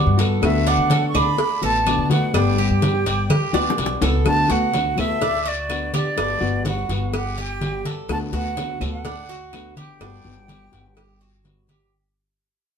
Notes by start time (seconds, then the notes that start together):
Already playing: G3 B3 D4 F#4 F#5
0.06 G2
0.18 B3 F#4 A4, cowbell, short guiro
0.41 D2 D3 A3 B3 F#4 E5, cowbell, high conga, long guiro, claves
0.67 D4 F#5, cowbell, high conga
0.78 D3
0.90 A4, cowbell, high conga, short guiro
1.09 C#6
1.14 D2 D4 B5, high conga, low conga, short guiro, claves
1.38 muted nylon-string guitar stroke, cowbell, high conga, long guiro
1.62 A1 A3 B3 F#4 A4 A5, high conga
1.86 D3 A3 B3 D4 F#4, cowbell, high conga, short guiro, claves
1.98 D3
2.10 A3 B3 F#4 F#5, cowbell, high conga, short guiro
2.34 G1 G3 B3 D4 G5, cowbell, high conga, long guiro, claves
2.58 G4, high conga
2.70 G2
2.82 cowbell, high conga, short guiro
3.06 G1 D5, cowbell, high conga, short guiro
3.30 G4, muted nylon-string guitar stroke, cowbell, high conga, long guiro, claves
3.53 D2 B3 D4 F#4, high bongo
3.70 low bongo
3.77 B1 G3 B3 F#4, cowbell, short guiro
3.86 low bongo
4.01 C#2 B3 F#4 A4, cowbell, low bongo, low conga, short guiro
4.25 D2 D3 A3 B3 F#4 A5, cowbell, high conga, long guiro, claves
4.49 D2 A3 B3 F#4 F#5, cowbell, high conga
4.73 D3 A3 B3 F#4, cowbell, high conga, short guiro
4.97 D2 A3 B3 F#4 A4 E5, high conga, low conga, short guiro, claves
5.21 D4, muted nylon-string guitar stroke, cowbell, high conga, low conga, long guiro
5.46 F#4 D5, high conga
5.69 D3 A3 B3 F#4, cowbell, high conga, short guiro, claves
5.94 G4 D5, cowbell, high conga, short guiro
6.17 G1 G3 B3 D4 F#4, cowbell, high conga, long guiro, claves
6.41 G1 B3 F#4, high conga
6.65 G3 B3 F#4 F#5, cowbell, high conga, short guiro
6.89 G1 B3 F#4, cowbell, high conga, short guiro
7.13 G4 F#5, muted nylon-string guitar stroke, cowbell, high conga, long guiro, claves
7.37 G4 G5, high conga
7.61 G3 B3 F#4, cowbell, high conga, short guiro
7.85 A4, cowbell, high conga, short guiro
8.09 D2 D3 A3 B3 F#4 A5, cowbell, high conga, long guiro, claves
8.33 D2 A3 B3 F#4 F#5, cowbell, high conga
8.57 D3 A3 B3 F#4, cowbell, high conga, short guiro
8.81 D2 A3 B3 F#4 A4, high conga, low conga, short guiro, claves
8.92 F#5
9.05 D4, muted nylon-string guitar stroke, cowbell, high conga, low conga, long guiro
9.29 F#4, high conga
9.52 D3 A3 B3 F#4, cowbell, high conga, short guiro, claves
9.76 G4 G5, cowbell, high conga, short guiro
10.00 G1 G3 B3 D4 F#4, cowbell, high conga, long guiro, claves
10.24 G1 B3 F#4, high conga
10.48 G3 B3 F#4 G4, cowbell, high conga, short guiro
10.72 G1 B3 F#4, cowbell, high conga, short guiro
10.96 G4, muted nylon-string guitar stroke, cowbell, high conga, long guiro, claves
11.21 F#4, high conga
11.44 G3 B3 F#4, cowbell, high conga, short guiro
11.68 G4, cowbell, high conga, short guiro